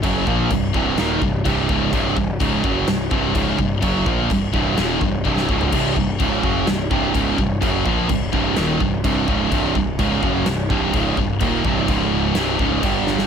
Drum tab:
CC |x---x---x---x---|x---x---x---x---|x---x---x-------|x---x---x---x---|
SD |--------o-------|--------o-------|--------o----o--|--------o-------|
FT |----------------|----------------|---------------o|----------------|
BD |o-o-o-o---o-o-o-|o-o-o-o---o-o-o-|o-o-o-o---o-o-o-|o-o-o-o---o-o-o-|

CC |x---x---x---x---|x---x---x---x---|x---x---x---x---|
SD |--------o-------|--------o-------|--------o-----oo|
FT |----------------|----------------|----------------|
BD |o-o-o-o---o-o-o-|o-o-o-o---o-o-o-|o-o-o-----o-o---|